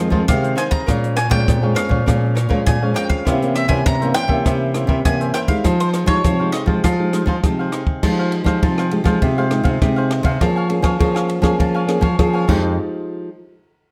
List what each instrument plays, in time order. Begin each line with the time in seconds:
Already playing: nylon-string guitar F2, cavaquinho C5 F5, mandolin D#5
0.10 nylon-string guitar D#3 F3 G#3 C4, cavaquinho D#4 G#4 C5 F5, kick
0.28 nylon-string guitar C3 D#3 G#3 C4, mandolin F5, kick, cross-stick, closed hi-hat
0.42 cavaquinho G#4 C5 F5, closed hi-hat
0.56 cavaquinho D#4 G#4 C5 F5, mandolin G#5, cross-stick, closed hi-hat
0.71 mandolin A#5, kick, closed hi-hat
0.86 nylon-string guitar A#2 F3 G#3 C#4, cavaquinho A#4 C#5 F5 G#5, kick, cross-stick, closed hi-hat
1.04 closed hi-hat
1.16 cavaquinho A#4 C#5 F5 G#5, mandolin G#5, cross-stick, closed hi-hat
1.30 nylon-string guitar A#2 F3 G#3 C#4, cavaquinho A#4 C#5 F5 G#5, mandolin G5, kick
1.48 nylon-string guitar F2 A#2, kick, cross-stick, closed hi-hat
1.62 nylon-string guitar F3 G#3 C#4, cavaquinho C#5 F5 G#5
1.75 cavaquinho A#4 C#5 F5 G#5, mandolin F5, cross-stick, closed hi-hat
1.89 nylon-string guitar A#2 F3 G#3 C#4, cavaquinho C#5 F5 G#5, kick
2.06 nylon-string guitar A#2 F3 G#3 C#4, cavaquinho A#4 C#5 F5 G#5, kick, cross-stick, closed hi-hat
2.35 cavaquinho A#4 C#5 F5 G#5, cross-stick, closed hi-hat
2.49 nylon-string guitar A#2 F3 G#3 C#4, cavaquinho A#4 C#5 F5 G#5, kick
2.66 nylon-string guitar F2 A#2, mandolin G#5, kick, cross-stick, closed hi-hat
2.81 nylon-string guitar F3 G#3 C#4, cavaquinho C#5 F5 G#5
2.94 cavaquinho A#4 C#5 F5 G#5, mandolin G5, cross-stick, closed hi-hat
3.10 mandolin F5, kick
3.25 nylon-string guitar C3 E3 A#3 C#4, cavaquinho E4 A#4 C5 E5, kick, cross-stick, closed hi-hat
3.42 nylon-string guitar E3 A#3 C#4, closed hi-hat
3.54 cavaquinho E4 A#4 C5 E5, mandolin E5, cross-stick, closed hi-hat
3.68 nylon-string guitar C3 E3 A#3 C#4, cavaquinho E4 A#4 C5 E5, mandolin G#5, kick
3.86 nylon-string guitar G2 C3, mandolin A#5, kick, cross-stick, closed hi-hat
4.01 nylon-string guitar E3 A#3 C#4, cavaquinho A#4 C5 E5, closed hi-hat
4.14 nylon-string guitar E3 A#3 C#4, cavaquinho E4 A#4 C5 E5, mandolin G5, cross-stick, closed hi-hat
4.28 nylon-string guitar C3 E3 A#3 C#4, cavaquinho A#4 C5 E5, kick
4.45 nylon-string guitar C3, cavaquinho E4 A#4 C5 E5, kick, cross-stick, closed hi-hat
4.74 nylon-string guitar E3 A#3 C#4, cavaquinho E4 A#4 C5 E5, cross-stick, closed hi-hat
4.87 nylon-string guitar C3, cavaquinho E4 A#4 C5 E5, kick
5.05 nylon-string guitar G2 C3 E3 A#3 C#4, mandolin G#5, kick, cross-stick, closed hi-hat
5.20 cavaquinho A#4 C5 E5, closed hi-hat
5.34 cavaquinho E4 A#4 C5 E5, mandolin G5, cross-stick, closed hi-hat
5.48 nylon-string guitar G#3 D#4 G4, mandolin F5, kick, closed hi-hat
5.64 nylon-string guitar F3, cavaquinho D#4 G#4 C5 F5, kick, cross-stick, closed hi-hat
5.80 mandolin C5, closed hi-hat
5.93 cavaquinho D#4 G#4 C5 F5, cross-stick, closed hi-hat
6.06 nylon-string guitar F3 G#3 D#4 G4, cavaquinho D#4 G#4 C5 F5, mandolin C#5, kick
6.24 nylon-string guitar C3 F3, kick, cross-stick, closed hi-hat
6.39 nylon-string guitar G#3 D#4 G4, cavaquinho G#4 C5 F5
6.52 cavaquinho D#4 G#4 C5 F5, mandolin D#5, cross-stick, closed hi-hat
6.66 nylon-string guitar F3 G#3 D#4 G4, cavaquinho G#4 C5 F5, kick
6.84 nylon-string guitar F3, cavaquinho D#4 G#4 C5 F5, mandolin F5, kick, cross-stick, closed hi-hat
6.99 nylon-string guitar G#3 D#4 G4
7.13 nylon-string guitar G#3 D#4 G4, cavaquinho D#4 G#4 C5 F5, cross-stick, closed hi-hat
7.26 nylon-string guitar F3, cavaquinho D#4 G#4 C5 F5, kick
7.44 nylon-string guitar C3 F3 G#3 D#4 G4, kick, cross-stick, closed hi-hat
7.59 cavaquinho G#4 C5 F5
7.72 cavaquinho D#4 G#4 C5 F5, cross-stick, closed hi-hat
7.87 kick
8.03 nylon-string guitar F3 G#3 D#4 G4, cavaquinho D#4 G#4 C5 F5, kick, cross-stick, crash
8.19 cavaquinho G#4 C5 F5
8.32 muted cavaquinho stroke, ride
8.44 nylon-string guitar F3 G#3 D#4 G4, cavaquinho G#4 C5 F5, kick, cross-stick, ride
8.62 nylon-string guitar C3 F3, cavaquinho D#4 G#4 C5 F5, kick, ride
8.78 cavaquinho G#4 C5 F5, cross-stick
8.91 nylon-string guitar G#3 D#4 G4, muted cavaquinho stroke, ride
9.04 nylon-string guitar F3 G#3 D#4 G4, cavaquinho G#4 C5 F5, kick, cross-stick, ride
9.22 nylon-string guitar C3 F3, cavaquinho D#4 G#4 C5 F5, kick, ride
9.38 nylon-string guitar G#3 D#4 G4, cavaquinho G#4 C5 F5
9.51 nylon-string guitar G#3 D#4 G4, cross-stick, ride
9.63 nylon-string guitar C3, cavaquinho G#4 C5 F5, kick, ride
9.82 nylon-string guitar C3 G#3 D#4 G4, kick, cross-stick, ride
9.96 cavaquinho G#4 C5 F5
10.11 cavaquinho D#4 G#4 C5 F5, cross-stick, ride
10.23 nylon-string guitar C3, cavaquinho G#4 C5 F5, kick, ride
10.40 nylon-string guitar F3 A#3 C#4 G#4, cavaquinho A#4 C#5 F5 G#5, kick, cross-stick, ride
10.56 cavaquinho C#5 F5 G#5
10.69 nylon-string guitar A#3 C#4 G#4, muted cavaquinho stroke, ride
10.82 nylon-string guitar F3, cavaquinho C#5 F5 G#5, kick, cross-stick, ride
10.99 nylon-string guitar F3 A#3 C#4 G#4, cavaquinho A#4 C#5 F5 G#5, kick, ride
11.15 cavaquinho C#5 F5 G#5, cross-stick
11.28 muted cavaquinho stroke, ride
11.42 nylon-string guitar F3 A#3 C#4 G#4, cavaquinho C#5 F5 G#5, kick, cross-stick, ride
11.58 nylon-string guitar F3, cavaquinho A#4 C#5 F5 G#5, kick, ride
11.74 cavaquinho C#5 F5 G#5
11.87 nylon-string guitar A#3 C#4 G#4, cross-stick, ride
12.01 nylon-string guitar F3, cavaquinho C#5 F5 G#5, kick, ride
12.18 nylon-string guitar F3 A#3 C#4 G#4, kick, cross-stick, ride
12.33 cavaquinho C#5 F5 G#5
12.47 nylon-string guitar F2 F3 G#3 D#4 G4, cavaquinho D#4 G#4 C5 F5, kick, crash